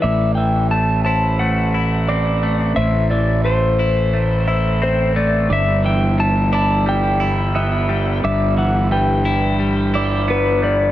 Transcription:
X:1
M:4/4
L:1/8
Q:1/4=88
K:Ador
V:1 name="Electric slide guitar"
e g a a f4 | e d c4 c d | e g a a g4 | e f g4 B d |]
V:2 name="Clean electric guitar"
d e2 c2 z d2 | c e c2 z e2 z | d e2 d2 z e2 | d e B2 z d2 z |]
V:3 name="Clean electric guitar"
A,, E, A, E A, E C A, | A,, E, A, E A, E C A, | G,, E, G, E G, E B, G, | G,, E, G, E G, E B, G, |]
V:4 name="Fingered electric bass" clef=bass
A,,,8 | A,,,8 | G,,,8 | G,,,8 |]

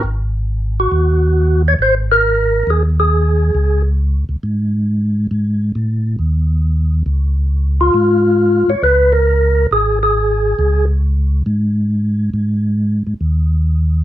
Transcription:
X:1
M:4/4
L:1/8
Q:"Swing" 1/4=137
K:Db
V:1 name="Tonewheel organ"
z3 G4 d | c B3 A A3- | A z6 z | z8 |
z3 F4 d | _c B3 A A3- | A z6 z | z8 |]
V:2 name="Tonewheel organ" clef=bass
A,,,4 E,,4 | A,,,4 E,,4 | D,,3 D,, A,,4 | A,,2 =A,,2 E,,4 |
D,,4 A,,3 A,, | D,,4 A,,,4 | D,,4 A,,4 | A,,3 A,, E,,4 |]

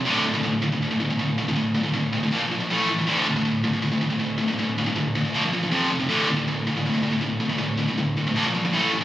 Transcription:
X:1
M:4/4
L:1/16
Q:1/4=159
K:Dm
V:1 name="Distorted electric guitar" clef=bass
[D,,A,,D,]2 [D,,A,,] [D,,A,,] [D,,A,,]2 [D,,A,,] [D,,A,,] [D,,A,,] [D,,A,,] [D,,A,,] [D,,A,,] [D,,A,,]2 [D,,A,,] [D,,A,,] | [D,,A,,]2 [D,,A,,] [D,,A,,] [D,,A,,]2 [D,,A,,] [D,,A,,] [B,,F,B,] [B,,F,] [B,,F,] [B,,F,] [A,,E,A,]2 [A,,E,] [A,,E,] | [D,,A,,D,]2 [D,,A,,] [D,,A,,] [D,,A,,]2 [D,,A,,] [D,,A,,] [D,,A,,] [D,,A,,] [D,,A,,] [D,,A,,] [D,,A,,]2 [D,,A,,] [D,,A,,] | [D,,A,,]2 [D,,A,,] [D,,A,,] [D,,A,,]2 [D,,A,,] [D,,A,,] [B,,F,B,] [B,,F,] [B,,F,] [B,,F,] [F,,C,F,]2 [F,,C,] [F,,C,] |
[D,,A,,D,]2 [D,,A,,] [D,,A,,] [D,,A,,]2 [D,,A,,] [D,,A,,] [D,,A,,] [D,,A,,] [D,,A,,] [D,,A,,] [D,,A,,]2 [D,,A,,] [D,,A,,] | [D,,A,,]2 [D,,A,,] [D,,A,,] [D,,A,,]2 [D,,A,,] [D,,A,,] [B,,F,B,] [B,,F,] [B,,F,] [B,,F,] [A,,E,A,]2 [A,,E,] [A,,E,] |]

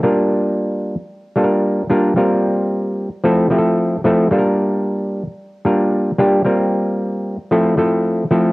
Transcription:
X:1
M:4/4
L:1/8
Q:"Swing 16ths" 1/4=112
K:Gdor
V:1 name="Clav"
[G,B,DFB]3 z2 [G,B,DFAB]2 [G,B,DFB] | [G,B,CFB]3 z [F,A,CEA] [F,A,CEGA]2 [F,A,CEA] | [G,B,DFAB]3 z2 [G,B,DFB]2 [G,B,DFG] | [G,B,CFB]3 z [F,A,CEA] [F,A,CEA]2 [F,A,CEA] |]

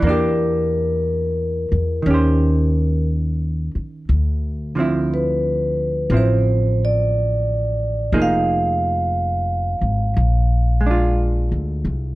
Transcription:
X:1
M:4/4
L:1/8
Q:"Swing" 1/4=59
K:Ddor
V:1 name="Vibraphone"
_B6 z2 | z2 B2 c d3 | f6 z2 |]
V:2 name="Hollow-body jazz guitar"
[E,_B,DG]4 [_E,_DGc]4 | z [D,F,CE]3 [F,CE]4 | [F,_B,_E_A]4 z [_A,DF]3 |]
V:3 name="Upright bass" clef=bass
E,,3 E,, _E,,3 z | D,,4 A,,,4 | F,,,3 _A,,, _B,,,2- (3B,,, D,, C,, |]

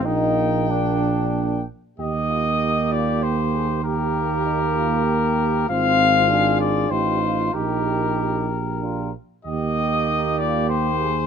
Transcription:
X:1
M:3/4
L:1/8
Q:1/4=96
K:Eb
V:1 name="Trumpet"
g4- g z | e3 d c2 | B6 | f3 d c2 |
B4- B z | e3 d c2 |]
V:2 name="French horn"
E2 D3 z | G F E F G A | G2 E F G2 | F2 A2 G F |
G4- G z | G2 E F G A |]
V:3 name="Flugelhorn"
E2 D3 z | G6 | G6 | F4 F2 |
G3 z F z | G6 |]
V:4 name="Euphonium"
B,4- B, z | B,6 | B,6 | C2 D2 E2 |
E3 z D z | B,6 |]
V:5 name="Tuba" clef=bass
B,,,4- B,,, z | E,,6- | E,,6 | A,,,4 =A,,,2 |
B,,,4- B,,, z | E,,6 |]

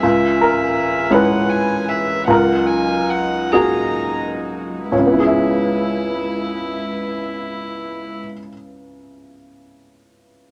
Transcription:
X:1
M:6/8
L:1/16
Q:3/8=43
K:C#dor
V:1 name="Violin"
e6 f2 g2 e2 | f2 g2 f2 a3 z3 | E12- | E12 |]
V:2 name="Upright piano"
z2 A4 B6 | A6 G6 | [C,,C,B,EGce]12- | [C,,C,B,EGce]12 |]
V:3 name="Upright piano"
C,,6 [G,CE]6 | C,,6 [A,DF]6 | z12 | z12 |]
V:4 name="String section"
[E,CG]12 | [F,DF]12 | [G,EB]12- | [G,EB]12 |]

